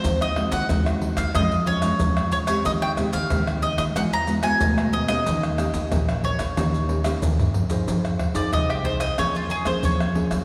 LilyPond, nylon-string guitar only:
\new Staff \with { instrumentName = "Nylon-string guitar" } { \time 4/4 \key ees \mixolydian \tempo 4 = 92 << { <aes c' ges'>8 <aes c' ges'>8 <aes c' ges'>4 <aes des' f'>16 r16 <aes des' f'>16 <aes des' f'>4 <aes c' g'>16~ | <aes c' g'>8 <aes c' g'>16 r16 <aes c' g'>8. r16 <gis b fis'>16 r16 <gis b fis'>16 <gis b fis'>4 <bes des' g'>16~ | <bes des' g'>8 <bes des' g'>16 r16 <bes des' g'>8. r16 <bes des' g'>16 r16 <bes des' g'>16 <bes des' g'>4 <ees' aes' c''>16~ | \key f \minor <ees' aes' c''>8 r16 <ees' aes' c''>8. <ees' aes' c''>16 r16 <bes des' aes'>8 r16 <bes des' aes'>8. <bes des' aes'>8 | } \\ { ees4 ees4 f4 f4 | ees4 ees4 e4 b,4 | ees4 bes,4 ees4 bes,4 | f4 c4 f4 f4 | } >> }